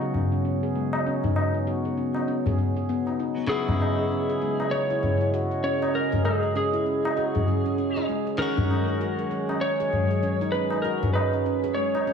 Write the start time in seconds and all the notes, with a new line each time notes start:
Already playing: C#3 F#3 B3 D#4 F#4 C#5
0.01 G#4
0.14 C#4, tabla ge
0.32 C#4
0.45 C#4
0.63 G#4
0.75 G#3, tabla tin
0.93 G#4, tabla na, tabla tin
1.06 C#4
1.24 D#4, tabla ge
1.36 C#4, tabla na
1.54 D#4
1.67 F#4
1.85 G#4
1.97 C#4
2.14 C#4, tabla na, tabla tin
2.28 C#4
2.46 G#4, tabla ge
2.58 G#4
2.77 G#4
2.89 B3
3.07 D#4, tabla na, tabla tin
3.20 D#4
3.38 B3
3.47 C#3 F#3 B3 C#4 F#4 G#4 D#5
3.52 E4
3.68 G#4, tabla na, tabla ge
3.81 C#4, tabla na
3.99 C#4
4.11 C#4
4.30 G#4
4.42 G#3
4.60 G#4, tabla na
4.71 C#4 C#5
4.90 E4
5.03 C#4, tabla ge
5.21 E4
5.34 F#4
5.51 G#4
5.64 C#4 C#5, tabla tin
5.82 C#4, tabla na, tabla tin
5.94 C#4 A#4
6.12 G#4, tabla ge
6.25 G#3 G#4, tabla na
6.43 G#4
6.55 C#4 G#4
6.73 E4
6.86 C#4
7.05 E4, tabla na, tabla tin
7.17 F#4
7.35 G#4, tabla ge
7.48 C#4
7.66 C#4
7.78 C#4
7.96 G#4, tabla tin
8.09 G#3
8.27 G#4
8.38 D#3 F#3 G#3 C#4 G#4 A#4
8.42 F#4
8.57 D#4, tabla na, tabla ge
8.70 C#4, tabla na
8.88 D#4
9.01 F#4
9.19 G#4
9.31 C#4
9.49 C#4, tabla na
9.61 C#4 C#5
9.80 G#4
9.93 G#3, tabla ge
10.11 G#4
10.23 C#4
10.41 D#4
10.52 C#4 B4, tabla tin
10.70 D#4, tabla na, tabla tin
10.82 F#4 A#4
11.03 G#4, tabla ge
11.13 C#4 B4, tabla na
11.33 C#4
11.46 C#4
11.64 G#4
11.74 G#3 C#5
11.94 G#4, tabla na, tabla tin
12.07 C#4